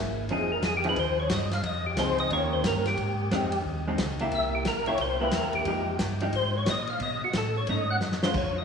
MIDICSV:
0, 0, Header, 1, 5, 480
1, 0, Start_track
1, 0, Key_signature, -4, "major"
1, 0, Tempo, 335570
1, 423, Time_signature, 4, 2, 24, 8
1, 12367, End_track
2, 0, Start_track
2, 0, Title_t, "Tonewheel organ"
2, 0, Program_c, 0, 16
2, 466, Note_on_c, 0, 68, 91
2, 742, Note_off_c, 0, 68, 0
2, 745, Note_on_c, 0, 70, 100
2, 906, Note_off_c, 0, 70, 0
2, 936, Note_on_c, 0, 68, 97
2, 1075, Note_off_c, 0, 68, 0
2, 1103, Note_on_c, 0, 67, 75
2, 1238, Note_off_c, 0, 67, 0
2, 1275, Note_on_c, 0, 71, 87
2, 1404, Note_off_c, 0, 71, 0
2, 1424, Note_on_c, 0, 72, 89
2, 1699, Note_off_c, 0, 72, 0
2, 1714, Note_on_c, 0, 73, 101
2, 1870, Note_off_c, 0, 73, 0
2, 1894, Note_on_c, 0, 75, 95
2, 2174, Note_off_c, 0, 75, 0
2, 2187, Note_on_c, 0, 77, 110
2, 2346, Note_off_c, 0, 77, 0
2, 2374, Note_on_c, 0, 75, 94
2, 2654, Note_off_c, 0, 75, 0
2, 2667, Note_on_c, 0, 67, 73
2, 2825, Note_off_c, 0, 67, 0
2, 2851, Note_on_c, 0, 72, 99
2, 3132, Note_off_c, 0, 72, 0
2, 3146, Note_on_c, 0, 75, 127
2, 3305, Note_off_c, 0, 75, 0
2, 3335, Note_on_c, 0, 73, 86
2, 3614, Note_off_c, 0, 73, 0
2, 3620, Note_on_c, 0, 72, 86
2, 3781, Note_off_c, 0, 72, 0
2, 3818, Note_on_c, 0, 70, 95
2, 4095, Note_off_c, 0, 70, 0
2, 4108, Note_on_c, 0, 67, 98
2, 5173, Note_off_c, 0, 67, 0
2, 6220, Note_on_c, 0, 76, 88
2, 6497, Note_off_c, 0, 76, 0
2, 6508, Note_on_c, 0, 67, 65
2, 6666, Note_off_c, 0, 67, 0
2, 6690, Note_on_c, 0, 70, 91
2, 6972, Note_off_c, 0, 70, 0
2, 6972, Note_on_c, 0, 73, 124
2, 7138, Note_off_c, 0, 73, 0
2, 7173, Note_on_c, 0, 72, 88
2, 7454, Note_off_c, 0, 72, 0
2, 7459, Note_on_c, 0, 71, 110
2, 7622, Note_off_c, 0, 71, 0
2, 7649, Note_on_c, 0, 70, 84
2, 7932, Note_off_c, 0, 70, 0
2, 7942, Note_on_c, 0, 67, 95
2, 8544, Note_off_c, 0, 67, 0
2, 9091, Note_on_c, 0, 72, 96
2, 9373, Note_off_c, 0, 72, 0
2, 9392, Note_on_c, 0, 73, 113
2, 9549, Note_off_c, 0, 73, 0
2, 9576, Note_on_c, 0, 75, 96
2, 9856, Note_off_c, 0, 75, 0
2, 9864, Note_on_c, 0, 77, 109
2, 10025, Note_off_c, 0, 77, 0
2, 10051, Note_on_c, 0, 75, 90
2, 10334, Note_off_c, 0, 75, 0
2, 10359, Note_on_c, 0, 66, 67
2, 10513, Note_off_c, 0, 66, 0
2, 10547, Note_on_c, 0, 69, 85
2, 10822, Note_off_c, 0, 69, 0
2, 10832, Note_on_c, 0, 73, 98
2, 10990, Note_off_c, 0, 73, 0
2, 11019, Note_on_c, 0, 75, 75
2, 11298, Note_off_c, 0, 75, 0
2, 11306, Note_on_c, 0, 78, 109
2, 11406, Note_off_c, 0, 78, 0
2, 11779, Note_on_c, 0, 72, 93
2, 11944, Note_off_c, 0, 72, 0
2, 11983, Note_on_c, 0, 73, 83
2, 12261, Note_off_c, 0, 73, 0
2, 12277, Note_on_c, 0, 75, 89
2, 12367, Note_off_c, 0, 75, 0
2, 12367, End_track
3, 0, Start_track
3, 0, Title_t, "Hollow-body jazz guitar"
3, 0, Program_c, 1, 26
3, 0, Note_on_c, 1, 58, 61
3, 0, Note_on_c, 1, 64, 67
3, 0, Note_on_c, 1, 68, 61
3, 192, Note_off_c, 1, 58, 0
3, 195, Note_off_c, 1, 64, 0
3, 200, Note_off_c, 1, 68, 0
3, 437, Note_on_c, 1, 53, 65
3, 445, Note_on_c, 1, 60, 62
3, 453, Note_on_c, 1, 63, 72
3, 453, Note_on_c, 1, 68, 69
3, 705, Note_off_c, 1, 53, 0
3, 709, Note_off_c, 1, 60, 0
3, 713, Note_off_c, 1, 63, 0
3, 713, Note_off_c, 1, 68, 0
3, 1211, Note_on_c, 1, 53, 68
3, 1219, Note_on_c, 1, 60, 70
3, 1223, Note_on_c, 1, 63, 74
3, 1229, Note_on_c, 1, 68, 79
3, 1366, Note_off_c, 1, 53, 0
3, 1370, Note_off_c, 1, 60, 0
3, 1372, Note_off_c, 1, 63, 0
3, 1375, Note_off_c, 1, 68, 0
3, 2833, Note_on_c, 1, 53, 65
3, 2844, Note_on_c, 1, 60, 76
3, 2849, Note_on_c, 1, 63, 68
3, 2853, Note_on_c, 1, 68, 71
3, 3289, Note_off_c, 1, 53, 0
3, 3294, Note_off_c, 1, 60, 0
3, 3297, Note_off_c, 1, 63, 0
3, 3299, Note_off_c, 1, 68, 0
3, 3308, Note_on_c, 1, 51, 62
3, 3313, Note_on_c, 1, 58, 66
3, 3320, Note_on_c, 1, 61, 64
3, 3326, Note_on_c, 1, 67, 62
3, 4027, Note_off_c, 1, 51, 0
3, 4030, Note_off_c, 1, 58, 0
3, 4034, Note_off_c, 1, 61, 0
3, 4037, Note_off_c, 1, 67, 0
3, 4748, Note_on_c, 1, 56, 64
3, 4753, Note_on_c, 1, 60, 67
3, 4762, Note_on_c, 1, 63, 77
3, 4766, Note_on_c, 1, 67, 67
3, 5018, Note_off_c, 1, 56, 0
3, 5021, Note_off_c, 1, 60, 0
3, 5025, Note_off_c, 1, 63, 0
3, 5028, Note_off_c, 1, 67, 0
3, 5543, Note_on_c, 1, 56, 61
3, 5552, Note_on_c, 1, 60, 68
3, 5557, Note_on_c, 1, 63, 61
3, 5562, Note_on_c, 1, 67, 59
3, 5690, Note_off_c, 1, 56, 0
3, 5695, Note_off_c, 1, 60, 0
3, 5698, Note_off_c, 1, 63, 0
3, 5700, Note_off_c, 1, 67, 0
3, 6019, Note_on_c, 1, 58, 72
3, 6027, Note_on_c, 1, 64, 71
3, 6038, Note_on_c, 1, 67, 81
3, 6631, Note_off_c, 1, 58, 0
3, 6635, Note_off_c, 1, 64, 0
3, 6641, Note_off_c, 1, 67, 0
3, 6970, Note_on_c, 1, 58, 62
3, 6977, Note_on_c, 1, 64, 63
3, 6987, Note_on_c, 1, 67, 66
3, 7125, Note_off_c, 1, 58, 0
3, 7128, Note_off_c, 1, 64, 0
3, 7133, Note_off_c, 1, 67, 0
3, 7451, Note_on_c, 1, 58, 59
3, 7459, Note_on_c, 1, 64, 70
3, 7470, Note_on_c, 1, 67, 69
3, 8068, Note_off_c, 1, 58, 0
3, 8072, Note_off_c, 1, 64, 0
3, 8078, Note_off_c, 1, 67, 0
3, 8105, Note_on_c, 1, 53, 63
3, 8113, Note_on_c, 1, 56, 62
3, 8121, Note_on_c, 1, 63, 71
3, 8122, Note_on_c, 1, 67, 67
3, 8378, Note_off_c, 1, 53, 0
3, 8382, Note_off_c, 1, 56, 0
3, 8386, Note_off_c, 1, 63, 0
3, 8386, Note_off_c, 1, 67, 0
3, 8892, Note_on_c, 1, 53, 61
3, 8898, Note_on_c, 1, 56, 64
3, 8903, Note_on_c, 1, 63, 72
3, 8909, Note_on_c, 1, 67, 69
3, 9046, Note_off_c, 1, 53, 0
3, 9049, Note_off_c, 1, 56, 0
3, 9052, Note_off_c, 1, 63, 0
3, 9055, Note_off_c, 1, 67, 0
3, 11000, Note_on_c, 1, 57, 57
3, 11009, Note_on_c, 1, 61, 57
3, 11014, Note_on_c, 1, 63, 66
3, 11267, Note_off_c, 1, 57, 0
3, 11271, Note_off_c, 1, 61, 0
3, 11274, Note_off_c, 1, 63, 0
3, 11784, Note_on_c, 1, 56, 74
3, 11796, Note_on_c, 1, 61, 76
3, 11798, Note_on_c, 1, 65, 76
3, 11934, Note_off_c, 1, 56, 0
3, 11940, Note_off_c, 1, 61, 0
3, 11941, Note_off_c, 1, 65, 0
3, 12367, End_track
4, 0, Start_track
4, 0, Title_t, "Tonewheel organ"
4, 0, Program_c, 2, 16
4, 0, Note_on_c, 2, 32, 87
4, 404, Note_off_c, 2, 32, 0
4, 410, Note_on_c, 2, 29, 89
4, 881, Note_off_c, 2, 29, 0
4, 888, Note_on_c, 2, 41, 102
4, 1360, Note_off_c, 2, 41, 0
4, 1375, Note_on_c, 2, 39, 76
4, 1843, Note_off_c, 2, 39, 0
4, 1851, Note_on_c, 2, 43, 100
4, 2321, Note_off_c, 2, 43, 0
4, 2332, Note_on_c, 2, 41, 95
4, 2801, Note_off_c, 2, 41, 0
4, 2811, Note_on_c, 2, 37, 104
4, 3280, Note_off_c, 2, 37, 0
4, 3290, Note_on_c, 2, 39, 85
4, 3760, Note_off_c, 2, 39, 0
4, 3769, Note_on_c, 2, 43, 101
4, 4239, Note_off_c, 2, 43, 0
4, 4252, Note_on_c, 2, 44, 85
4, 4721, Note_off_c, 2, 44, 0
4, 4731, Note_on_c, 2, 41, 100
4, 5200, Note_off_c, 2, 41, 0
4, 5211, Note_on_c, 2, 39, 77
4, 5680, Note_off_c, 2, 39, 0
4, 5693, Note_on_c, 2, 37, 92
4, 6162, Note_off_c, 2, 37, 0
4, 6163, Note_on_c, 2, 36, 86
4, 6637, Note_off_c, 2, 36, 0
4, 6645, Note_on_c, 2, 34, 94
4, 7118, Note_off_c, 2, 34, 0
4, 7121, Note_on_c, 2, 36, 82
4, 7596, Note_off_c, 2, 36, 0
4, 7601, Note_on_c, 2, 40, 91
4, 7894, Note_off_c, 2, 40, 0
4, 7911, Note_on_c, 2, 40, 35
4, 8002, Note_off_c, 2, 40, 0
4, 8077, Note_on_c, 2, 41, 84
4, 8554, Note_off_c, 2, 41, 0
4, 8564, Note_on_c, 2, 43, 99
4, 9038, Note_off_c, 2, 43, 0
4, 9044, Note_on_c, 2, 44, 90
4, 9518, Note_off_c, 2, 44, 0
4, 9529, Note_on_c, 2, 46, 93
4, 10001, Note_off_c, 2, 46, 0
4, 10013, Note_on_c, 2, 47, 82
4, 10298, Note_off_c, 2, 47, 0
4, 10315, Note_on_c, 2, 47, 42
4, 10405, Note_off_c, 2, 47, 0
4, 10489, Note_on_c, 2, 45, 96
4, 10961, Note_off_c, 2, 45, 0
4, 10971, Note_on_c, 2, 44, 81
4, 11440, Note_on_c, 2, 42, 90
4, 11443, Note_off_c, 2, 44, 0
4, 11918, Note_off_c, 2, 42, 0
4, 11925, Note_on_c, 2, 41, 86
4, 12367, Note_off_c, 2, 41, 0
4, 12367, End_track
5, 0, Start_track
5, 0, Title_t, "Drums"
5, 413, Note_on_c, 9, 51, 52
5, 418, Note_on_c, 9, 36, 20
5, 556, Note_off_c, 9, 51, 0
5, 561, Note_off_c, 9, 36, 0
5, 894, Note_on_c, 9, 44, 54
5, 894, Note_on_c, 9, 51, 67
5, 897, Note_on_c, 9, 38, 70
5, 898, Note_on_c, 9, 36, 23
5, 1037, Note_off_c, 9, 44, 0
5, 1037, Note_off_c, 9, 51, 0
5, 1040, Note_off_c, 9, 38, 0
5, 1041, Note_off_c, 9, 36, 0
5, 1198, Note_on_c, 9, 51, 53
5, 1341, Note_off_c, 9, 51, 0
5, 1376, Note_on_c, 9, 36, 28
5, 1376, Note_on_c, 9, 51, 57
5, 1519, Note_off_c, 9, 36, 0
5, 1519, Note_off_c, 9, 51, 0
5, 1854, Note_on_c, 9, 44, 62
5, 1854, Note_on_c, 9, 51, 82
5, 1857, Note_on_c, 9, 36, 30
5, 1857, Note_on_c, 9, 38, 78
5, 1997, Note_off_c, 9, 44, 0
5, 1997, Note_off_c, 9, 51, 0
5, 2000, Note_off_c, 9, 36, 0
5, 2000, Note_off_c, 9, 38, 0
5, 2166, Note_on_c, 9, 51, 50
5, 2169, Note_on_c, 9, 38, 46
5, 2309, Note_off_c, 9, 51, 0
5, 2312, Note_off_c, 9, 38, 0
5, 2336, Note_on_c, 9, 36, 17
5, 2339, Note_on_c, 9, 51, 59
5, 2479, Note_off_c, 9, 36, 0
5, 2482, Note_off_c, 9, 51, 0
5, 2814, Note_on_c, 9, 36, 21
5, 2814, Note_on_c, 9, 44, 64
5, 2814, Note_on_c, 9, 51, 77
5, 2817, Note_on_c, 9, 38, 65
5, 2957, Note_off_c, 9, 36, 0
5, 2957, Note_off_c, 9, 44, 0
5, 2957, Note_off_c, 9, 51, 0
5, 2960, Note_off_c, 9, 38, 0
5, 3124, Note_on_c, 9, 51, 47
5, 3267, Note_off_c, 9, 51, 0
5, 3294, Note_on_c, 9, 36, 21
5, 3297, Note_on_c, 9, 51, 55
5, 3437, Note_off_c, 9, 36, 0
5, 3440, Note_off_c, 9, 51, 0
5, 3775, Note_on_c, 9, 36, 23
5, 3776, Note_on_c, 9, 44, 64
5, 3776, Note_on_c, 9, 51, 80
5, 3779, Note_on_c, 9, 38, 77
5, 3918, Note_off_c, 9, 36, 0
5, 3919, Note_off_c, 9, 44, 0
5, 3919, Note_off_c, 9, 51, 0
5, 3922, Note_off_c, 9, 38, 0
5, 4084, Note_on_c, 9, 51, 53
5, 4087, Note_on_c, 9, 38, 37
5, 4227, Note_off_c, 9, 51, 0
5, 4230, Note_off_c, 9, 38, 0
5, 4253, Note_on_c, 9, 51, 54
5, 4254, Note_on_c, 9, 36, 21
5, 4396, Note_off_c, 9, 51, 0
5, 4397, Note_off_c, 9, 36, 0
5, 4736, Note_on_c, 9, 36, 20
5, 4739, Note_on_c, 9, 44, 50
5, 4739, Note_on_c, 9, 51, 67
5, 4742, Note_on_c, 9, 38, 66
5, 4879, Note_off_c, 9, 36, 0
5, 4882, Note_off_c, 9, 44, 0
5, 4882, Note_off_c, 9, 51, 0
5, 4885, Note_off_c, 9, 38, 0
5, 5034, Note_on_c, 9, 51, 69
5, 5177, Note_off_c, 9, 51, 0
5, 5216, Note_on_c, 9, 36, 23
5, 5359, Note_off_c, 9, 36, 0
5, 5695, Note_on_c, 9, 44, 64
5, 5695, Note_on_c, 9, 51, 78
5, 5696, Note_on_c, 9, 36, 28
5, 5698, Note_on_c, 9, 38, 77
5, 5838, Note_off_c, 9, 44, 0
5, 5838, Note_off_c, 9, 51, 0
5, 5839, Note_off_c, 9, 36, 0
5, 5841, Note_off_c, 9, 38, 0
5, 5999, Note_on_c, 9, 51, 52
5, 6142, Note_off_c, 9, 51, 0
5, 6173, Note_on_c, 9, 36, 21
5, 6173, Note_on_c, 9, 51, 53
5, 6316, Note_off_c, 9, 36, 0
5, 6316, Note_off_c, 9, 51, 0
5, 6650, Note_on_c, 9, 36, 23
5, 6651, Note_on_c, 9, 44, 58
5, 6651, Note_on_c, 9, 51, 69
5, 6654, Note_on_c, 9, 38, 64
5, 6793, Note_off_c, 9, 36, 0
5, 6794, Note_off_c, 9, 44, 0
5, 6794, Note_off_c, 9, 51, 0
5, 6797, Note_off_c, 9, 38, 0
5, 6952, Note_on_c, 9, 51, 46
5, 7096, Note_off_c, 9, 51, 0
5, 7121, Note_on_c, 9, 51, 60
5, 7127, Note_on_c, 9, 36, 21
5, 7264, Note_off_c, 9, 51, 0
5, 7270, Note_off_c, 9, 36, 0
5, 7602, Note_on_c, 9, 44, 65
5, 7602, Note_on_c, 9, 51, 76
5, 7605, Note_on_c, 9, 38, 77
5, 7607, Note_on_c, 9, 36, 20
5, 7745, Note_off_c, 9, 44, 0
5, 7745, Note_off_c, 9, 51, 0
5, 7748, Note_off_c, 9, 38, 0
5, 7750, Note_off_c, 9, 36, 0
5, 7908, Note_on_c, 9, 51, 47
5, 8051, Note_off_c, 9, 51, 0
5, 8085, Note_on_c, 9, 51, 55
5, 8088, Note_on_c, 9, 36, 27
5, 8228, Note_off_c, 9, 51, 0
5, 8231, Note_off_c, 9, 36, 0
5, 8568, Note_on_c, 9, 44, 70
5, 8568, Note_on_c, 9, 51, 74
5, 8570, Note_on_c, 9, 38, 75
5, 8571, Note_on_c, 9, 36, 27
5, 8711, Note_off_c, 9, 44, 0
5, 8711, Note_off_c, 9, 51, 0
5, 8713, Note_off_c, 9, 38, 0
5, 8714, Note_off_c, 9, 36, 0
5, 8875, Note_on_c, 9, 51, 50
5, 9018, Note_off_c, 9, 51, 0
5, 9049, Note_on_c, 9, 51, 58
5, 9052, Note_on_c, 9, 36, 22
5, 9192, Note_off_c, 9, 51, 0
5, 9195, Note_off_c, 9, 36, 0
5, 9529, Note_on_c, 9, 44, 57
5, 9529, Note_on_c, 9, 51, 76
5, 9532, Note_on_c, 9, 38, 82
5, 9534, Note_on_c, 9, 36, 21
5, 9672, Note_off_c, 9, 44, 0
5, 9672, Note_off_c, 9, 51, 0
5, 9675, Note_off_c, 9, 38, 0
5, 9677, Note_off_c, 9, 36, 0
5, 9832, Note_on_c, 9, 51, 47
5, 9975, Note_off_c, 9, 51, 0
5, 10009, Note_on_c, 9, 51, 58
5, 10015, Note_on_c, 9, 36, 23
5, 10152, Note_off_c, 9, 51, 0
5, 10158, Note_off_c, 9, 36, 0
5, 10489, Note_on_c, 9, 44, 61
5, 10489, Note_on_c, 9, 51, 65
5, 10492, Note_on_c, 9, 38, 77
5, 10495, Note_on_c, 9, 36, 19
5, 10632, Note_off_c, 9, 44, 0
5, 10632, Note_off_c, 9, 51, 0
5, 10635, Note_off_c, 9, 38, 0
5, 10638, Note_off_c, 9, 36, 0
5, 10969, Note_on_c, 9, 51, 67
5, 10976, Note_on_c, 9, 36, 23
5, 11112, Note_off_c, 9, 51, 0
5, 11119, Note_off_c, 9, 36, 0
5, 11452, Note_on_c, 9, 44, 55
5, 11455, Note_on_c, 9, 38, 53
5, 11595, Note_off_c, 9, 44, 0
5, 11598, Note_off_c, 9, 38, 0
5, 11615, Note_on_c, 9, 38, 49
5, 11758, Note_off_c, 9, 38, 0
5, 11769, Note_on_c, 9, 38, 85
5, 11912, Note_off_c, 9, 38, 0
5, 11931, Note_on_c, 9, 49, 71
5, 11933, Note_on_c, 9, 36, 70
5, 12074, Note_off_c, 9, 49, 0
5, 12076, Note_off_c, 9, 36, 0
5, 12367, End_track
0, 0, End_of_file